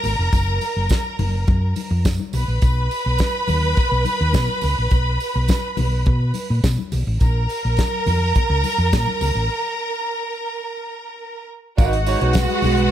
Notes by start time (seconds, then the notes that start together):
Already playing: A#4 A#5
0.04 G#1, open hi-hat, tambourine, low conga
0.19 F1
0.32 F#1, kick, closed hi-hat, tambourine, muted conga
0.61 open hi-hat, tambourine, muted conga
0.76 F#1
0.89 kick, snare, closed hi-hat, tambourine, high conga
1.19 F#1, open hi-hat, muted conga, high conga, low conga
1.47 F#2, kick, closed hi-hat, muted conga, low conga
1.76 open hi-hat, tambourine, muted conga, high conga
1.91 F2
2.05 F#2, kick, snare, closed hi-hat, tambourine, muted conga, high conga
2.19 high conga
2.33 B1 B4 B5, open hi-hat, tambourine, muted conga, low conga
2.48 A#1
2.62 B1, kick, closed hi-hat, tambourine, muted conga
2.91 open hi-hat, tambourine
3.06 B1
3.18 kick, snare, closed hi-hat, tambourine, high conga
3.48 D#2, open hi-hat, tambourine, muted conga, high conga, low conga
3.76 kick, closed hi-hat, tambourine, muted conga, low conga
3.92 B1
4.05 open hi-hat, tambourine, muted conga, high conga
4.21 D#2
4.33 B2, kick, snare, closed hi-hat, tambourine, muted conga, high conga
4.48 high conga
4.61 C#2, open hi-hat, tambourine, low conga
4.78 A#1
4.91 B1, kick, closed hi-hat, tambourine, muted conga
5.20 open hi-hat, tambourine
5.36 B1
5.48 kick, snare, closed hi-hat, tambourine, high conga
5.77 B1, open hi-hat, muted conga, high conga, low conga
6.06 B2, kick, closed hi-hat, muted conga, low conga
6.34 open hi-hat, tambourine, high conga
6.50 A#2
6.64 B2, kick, snare, closed hi-hat, tambourine, high conga
6.78 high conga
6.92 B1, open hi-hat, tambourine, muted conga, low conga
7.07 A1
7.20 A#1 A#4 A#5, kick, closed hi-hat, tambourine, muted conga
7.49 open hi-hat, tambourine
7.65 A#1
7.77 kick, snare, closed hi-hat, tambourine, muted conga, high conga
8.06 F2, open hi-hat, tambourine, high conga, low conga
8.35 kick, closed hi-hat, low conga
8.50 C#2
8.63 open hi-hat, tambourine, high conga
8.78 F2
8.93 A#2, kick, snare, closed hi-hat, tambourine, high conga
9.07 high conga
9.21 C#2, open hi-hat, tambourine, low conga
9.35 A1
11.77 G#1 G#3 D#4 F#4 B4 F#5, kick, closed hi-hat, tambourine, muted conga
11.92 muted clean electric guitar stroke, closed hi-hat
12.06 D#4 F#4 C#5, open hi-hat, tambourine
12.21 B1 D#4 F#4 C#5, closed hi-hat
12.33 muted clean electric guitar stroke, kick, snare, closed hi-hat, tambourine, muted conga, high conga
12.49 muted clean electric guitar stroke, closed hi-hat
12.62 B1, open hi-hat, tambourine, muted conga, high conga, low conga
12.77 muted clean electric guitar stroke, closed hi-hat